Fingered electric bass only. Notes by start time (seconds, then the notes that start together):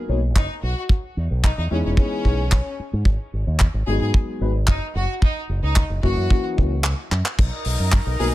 0.09 B1
0.36 F#1
0.63 B1
1.17 E2
1.31 B1
1.58 E2
1.71 E2
1.85 E1
2.25 B1
2.79 muted fingered electric bass stroke
2.93 G#2
3.05 G#1
3.33 G#1
3.47 D#2
3.74 G#1
3.87 G#1
4.01 G#2
4.41 G#1
4.68 F#1
4.95 F#1
5.49 F#1
5.63 C#2
5.90 F#1
6.03 F#1
6.17 F#2
6.58 C#2
7.11 F#2
7.39 B1
7.65 B1
7.79 F#2
8.06 B1
8.19 B1